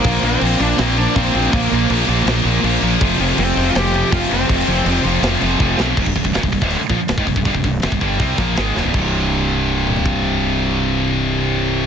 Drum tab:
CC |x-x-x-x-x-x-x-x-|x-x-x-x-x-x-x-x-|x-x-x-x-x-x-x-x-|x-x-x-x-x-x-----|
HH |----------------|----------------|----------------|----------------|
SD |--------o-------|--------o-------|--------o-------|--------o-----o-|
T2 |----------------|----------------|----------------|----------------|
FT |----------------|----------------|----------------|----------------|
BD |o-----------o---|o---------------|o-----------o---|o-----------o---|

CC |x---------------|----------------|x---------------|----------------|
HH |--o-o-o-o---o-o-|o-o-o-o-o-o-o---|----------------|----------------|
SD |----o-------o---|----o-----o-o-o-|----------------|----------------|
T2 |----------------|----------------|----------o-----|----------------|
FT |----------------|----------------|-----------o----|----------------|
BD |oooo-ooo--o--ooo|ooo--oo-o-o-----|o-----------o---|----------------|